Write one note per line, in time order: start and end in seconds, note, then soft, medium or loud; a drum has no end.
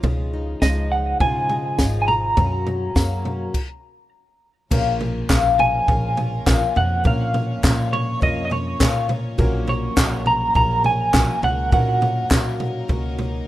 0.00 0.54 C#2 medium
0.00 0.61 C#3 medium
0.00 0.62 C#3 medium
0.00 0.61 F3 medium
0.00 0.62 G#3 medium
0.00 0.33 C#4 medium
0.00 0.62 D#4 medium
0.00 1.20 F4 medium
0.00 kick medium
0.00 floor tom loud
0.04 0.62 G#4 medium
0.33 0.91 D#4 medium
0.62 1.12 C#2 medium
0.62 1.21 C#3 medium
0.62 1.78 F3 medium
0.62 1.19 F3 medium
0.62 1.20 G#3 medium
0.62 1.50 G#3 medium
0.62 1.20 D#4 medium
0.62 1.21 G#4 medium
0.62 0.89 D#5 medium
0.62 kick loud
0.62 snare loud
0.62 tambourine medium
0.92 2.35 D#4 medium
0.92 1.19 F#5 medium
1.20 2.34 G#2 medium
1.20 1.80 C#3 medium
1.20 1.50 F3 medium
1.20 1.50 G#3 medium
1.20 1.49 D#4 medium
1.20 1.79 F4 medium
1.20 1.48 G#4 medium
1.20 2.01 G#5 medium
1.20 kick loud
1.20 floor tom medium
1.49 1.79 G#3 soft
1.49 2.38 G#3 medium
1.49 1.79 D#4 soft
1.49 1.79 G#4 medium
1.49 floor tom medium
1.79 2.29 G#1 medium
1.79 2.08 C#3 medium
1.79 2.08 F3 medium
1.79 2.34 F3 medium
1.79 2.09 G#3 medium
1.79 2.08 D#4 medium
1.79 2.38 F4 medium
1.79 2.07 G#4 medium
1.79 kick medium
1.79 snare loud
1.79 tambourine medium
2.02 2.07 G#5 medium
2.08 2.38 G#3 soft
2.08 2.38 D#4 soft
2.08 2.38 G#4 soft
2.08 4.09 A#5 medium
2.08 floor tom medium
2.37 2.88 F#2 medium
2.37 2.94 F#2 medium
2.37 3.51 F#2 medium
2.37 2.95 C#3 medium
2.37 2.95 F#3 medium
2.37 2.95 A#3 medium
2.37 2.96 C#4 medium
2.37 2.96 F#4 medium
2.37 kick loud
2.37 floor tom medium
2.67 3.26 C#4 medium
2.67 floor tom medium
2.95 3.54 F#2 medium
2.95 3.46 F#2 medium
2.95 3.54 C#3 medium
2.95 3.55 F#3 medium
2.95 3.51 F#3 medium
2.95 3.55 A#3 medium
2.95 3.52 A#3 medium
2.95 3.55 C#4 medium
2.95 3.55 F#4 medium
2.95 kick loud
2.95 snare medium
2.95 tambourine loud
3.25 3.52 C#4 medium
3.25 floor tom medium
3.54 kick medium
3.54 crash medium
4.70 5.22 A#1 medium
4.70 7.01 A#1 medium
4.70 5.00 A#2 medium
4.70 7.01 A#2 medium
4.70 5.12 F3 loud
4.70 9.35 F3 medium
4.70 5.01 F3 medium
4.70 5.12 A#3 loud
4.70 5.01 A#3 medium
4.70 11.68 C#4 medium
4.70 5.12 C#4 medium
4.70 5.00 C#4 medium
4.70 4.98 F4 medium
4.70 7.02 A#4 medium
4.70 5.13 A#4 loud
4.70 kick loud
4.70 floor tom medium
4.70 crash loud
5.00 5.29 A#3 soft
5.00 5.29 C#4 soft
5.00 5.29 F4 soft
5.00 floor tom medium
5.29 5.80 A#1 medium
5.29 5.88 A#2 medium
5.29 5.70 F3 medium
5.29 5.86 F3 medium
5.29 5.70 A#3 medium
5.29 5.88 A#3 medium
5.29 5.71 C#4 medium
5.29 5.89 C#4 medium
5.29 5.88 F4 medium
5.29 5.71 A#4 medium
5.29 kick loud
5.29 snare loud
5.29 clap loud
5.29 floor tom medium
5.29 tambourine medium
5.59 6.77 G#5 loud
5.59 floor tom medium
5.87 6.38 A#1 medium
5.87 6.28 F3 medium
5.87 6.17 F3 medium
5.87 6.29 A#3 medium
5.87 6.18 A#3 medium
5.87 6.29 C#4 medium
5.87 6.17 C#4 medium
5.87 6.16 F4 medium
5.87 6.29 A#4 medium
5.87 kick loud
5.87 floor tom medium
6.17 6.46 A#3 soft
6.17 6.46 C#4 medium
6.17 6.46 F4 medium
6.17 floor tom medium
6.46 6.59 A#1 loud
6.46 6.76 A#2 medium
6.46 6.87 F3 medium
6.46 6.76 F3 medium
6.46 6.87 A#3 medium
6.46 6.76 A#3 medium
6.46 6.88 C#4 medium
6.46 6.75 C#4 medium
6.46 6.74 F4 loud
6.46 6.88 A#4 medium
6.46 kick loud
6.46 snare loud
6.46 clap medium
6.46 floor tom medium
6.46 tambourine medium
6.75 7.01 F2 medium
6.75 7.03 A#3 soft
6.75 7.04 C#4 soft
6.75 7.04 F4 medium
6.75 7.04 F#5 medium
6.75 floor tom medium
7.04 9.35 A#1 medium
7.04 7.34 A#2 medium
7.04 7.55 A#2 medium
7.04 9.35 A#2 medium
7.04 7.34 F3 medium
7.04 7.46 F3 medium
7.04 7.34 A#3 medium
7.04 7.46 A#3 medium
7.04 7.33 C#4 medium
7.04 7.46 C#4 medium
7.04 7.32 F4 medium
7.04 7.46 A#4 loud
7.04 9.36 C#5 medium
7.04 7.61 F5 medium
7.04 kick loud
7.04 floor tom medium
7.34 7.62 A#3 soft
7.34 7.62 C#4 soft
7.34 7.63 F4 soft
7.34 floor tom medium
7.63 8.22 A#2 medium
7.63 8.14 A#2 medium
7.63 8.04 F3 medium
7.63 8.20 F3 medium
7.63 8.04 A#3 medium
7.63 8.21 A#3 medium
7.63 8.22 C#4 medium
7.63 8.04 C#4 medium
7.63 8.21 F4 medium
7.63 8.05 A#4 medium
7.63 kick loud
7.63 snare loud
7.63 clap medium
7.63 floor tom medium
7.63 tambourine medium
7.93 8.23 C#5 medium
7.93 floor tom medium
8.21 8.72 F2 medium
8.21 8.51 F3 medium
8.21 8.62 F3 medium
8.21 8.50 A#3 medium
8.21 8.63 A#3 medium
8.21 8.50 C#4 medium
8.21 8.63 C#4 medium
8.21 8.49 F4 medium
8.21 8.63 A#4 medium
8.21 8.43 D#5 loud
8.21 kick loud
8.21 floor tom medium
8.45 8.52 D#5 medium
8.50 8.79 A#3 soft
8.50 8.79 C#4 medium
8.50 8.79 F4 medium
8.50 9.06 C#5 medium
8.50 floor tom medium
8.79 9.09 A#2 medium
8.79 9.31 A#2 loud
8.79 9.21 F3 medium
8.79 9.09 F3 medium
8.79 9.10 A#3 medium
8.79 9.21 A#3 medium
8.79 9.08 C#4 medium
8.79 9.21 C#4 medium
8.79 9.07 F4 medium
8.79 9.22 A#4 medium
8.79 kick loud
8.79 snare loud
8.79 clap loud
8.79 floor tom medium
8.79 tambourine medium
9.09 9.38 A#3 soft
9.09 9.38 C#4 medium
9.09 9.38 F4 medium
9.09 floor tom medium
9.38 9.89 A#1 medium
9.38 11.69 A#1 medium
9.38 9.68 A#2 medium
9.38 11.69 A#2 medium
9.38 9.79 F#3 loud
9.38 9.68 F#3 loud
9.38 13.47 F#3 medium
9.38 9.80 A#3 loud
9.38 9.68 A#3 medium
9.38 9.80 C#4 loud
9.38 9.67 C#4 loud
9.38 9.66 F#4 medium
9.38 13.47 A#4 medium
9.38 9.80 A#4 loud
9.38 kick loud
9.38 floor tom medium
9.67 9.95 A#3 soft
9.67 9.96 C#4 soft
9.67 9.96 F#4 medium
9.67 10.27 C#5 medium
9.67 floor tom medium
9.96 10.48 A#1 medium
9.96 10.55 A#2 medium
9.96 10.54 F#3 medium
9.96 10.38 F#3 medium
9.96 10.55 A#3 medium
9.96 10.38 A#3 medium
9.96 10.55 C#4 medium
9.96 10.39 C#4 medium
9.96 10.56 F#4 medium
9.96 10.39 A#4 medium
9.96 kick loud
9.96 snare loud
9.96 clap loud
9.96 floor tom medium
9.96 tambourine loud
10.26 10.55 A#5 loud
10.26 floor tom medium
10.54 11.06 A#1 loud
10.54 10.84 F#3 medium
10.54 10.96 F#3 medium
10.54 10.85 A#3 medium
10.54 10.97 A#3 medium
10.54 10.84 C#4 medium
10.54 10.97 C#4 medium
10.54 10.83 F#4 medium
10.54 10.97 A#4 medium
10.54 10.83 A#5 loud
10.54 kick loud
10.54 floor tom medium
10.84 11.13 A#3 soft
10.84 11.13 C#4 medium
10.84 11.13 F#4 medium
10.84 11.44 G#5 medium
10.84 floor tom medium
11.13 11.27 A#1 loud
11.13 11.43 A#2 medium
11.13 11.55 F#3 medium
11.13 11.43 F#3 medium
11.13 11.43 A#3 medium
11.13 11.55 A#3 medium
11.13 11.42 C#4 medium
11.13 11.55 C#4 medium
11.13 11.41 F#4 medium
11.13 11.56 A#4 medium
11.13 kick loud
11.13 snare loud
11.13 clap medium
11.13 floor tom medium
11.13 tambourine medium
11.42 11.68 C#2 medium
11.42 11.71 A#3 soft
11.42 11.72 C#4 soft
11.42 11.72 F#4 medium
11.42 11.72 F#5 medium
11.42 floor tom medium
11.72 13.47 A#1 medium
11.72 12.02 A#2 medium
11.72 12.23 A#2 loud
11.72 13.47 A#2 medium
11.72 12.02 F#3 medium
11.72 12.14 F#3 medium
11.72 12.02 A#3 medium
11.72 12.14 A#3 medium
11.72 12.01 C#4 medium
11.72 12.14 C#4 medium
11.72 13.47 D#4 medium
11.72 12.00 F#4 medium
11.72 12.15 A#4 loud
11.72 12.28 F#5 medium
11.72 kick loud
11.72 floor tom medium
12.01 12.30 A#3 soft
12.01 12.30 C#4 medium
12.01 12.31 F#4 medium
12.01 floor tom medium
12.30 12.89 A#2 medium
12.30 12.81 A#2 medium
12.30 12.72 F#3 medium
12.30 12.88 F#3 medium
12.30 12.72 A#3 medium
12.30 12.88 A#3 medium
12.30 12.89 C#4 medium
12.30 12.72 C#4 medium
12.30 12.90 F#4 medium
12.30 12.73 A#4 medium
12.30 kick loud
12.30 snare loud
12.30 clap loud
12.30 floor tom medium
12.30 tambourine medium
12.60 floor tom medium
12.88 13.40 C#2 medium
12.88 13.18 F#3 medium
12.88 13.30 F#3 medium
12.88 13.19 A#3 medium
12.88 13.30 A#3 medium
12.88 13.18 C#4 medium
12.88 13.31 C#4 medium
12.88 13.17 F#4 medium
12.88 13.31 A#4 medium
12.88 kick loud
12.88 floor tom medium
13.18 13.47 A#3 soft
13.18 13.47 C#4 medium
13.18 13.47 F#4 medium
13.18 floor tom medium